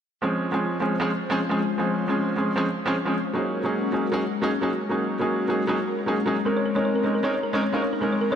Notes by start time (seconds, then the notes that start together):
0.22 F3 G#3 C4 C#4 F4 G#4 C5
0.52 F3 G#3 C4 C#4 G#4
0.80 F3 G#3 C4 C#4 G#4
1.00 F3 G#3 C4 C#4 G#4
1.30 F3 G#3 C4 C#4 G#4
1.49 F3 G#3 C4 C#4 G#4
1.78 F3 G#3 C4 C#4 G#4
2.08 F3 G#3 C4 C#4 G#4
2.36 F3 G#3 C4 C#4 G#4
2.56 F3 G#3 C4 C#4 G#4
2.86 F3 G#3 C4 C#4 G#4
3.05 F3 G#3 C4 C#4 G#4
3.34 F#3 G#3 A#3 C#4 D#4 F#4 G#4 A#4
3.64 F#3 A#3 C#4 D#4 G#4
3.92 F#3 A#3 C#4 D#4 G#4
4.12 F#3 A#3 C#4 D#4 G#4
4.42 F#3 A#3 C#4 D#4 G#4
4.61 F#3 A#3 C#4 D#4 G#4
4.89 F#3 A#3 C#4 D#4 G#4
5.19 F#3 A#3 C#4 D#4 G#4
5.48 F#3 A#3 C#4 D#4 G#4
5.67 F#3 A#3 C#4 D#4 G#4
6.06 F#3 A#3 C#4 D#4 G#4
6.26 F#3 A#3 C#4 D#4 G#4
6.45 G#3 C4 C#4 D#4 A#4
6.57 C#5
6.66 A#4
6.75 G#3 C4 C#4 D#4 A#4 C#5
6.85 C#5
6.96 A#4
7.03 G#3 C4 C#4 D#4 A#4 C#5
7.15 A#4
7.23 G#3 C4 C#4 D#4 A#4 C#5
7.35 C#5
7.43 A#4
7.53 G#3 C4 C#4 D#4 A#4 C#5
7.63 C#5
7.73 G#3 C4 C#4 D#4 A#4 F5
7.82 C#5
7.93 A#4
8.01 G#3 C4 C#4 D#4 A#4
8.12 C#5
8.21 A#4
8.31 G#3 C4 C#4 C#5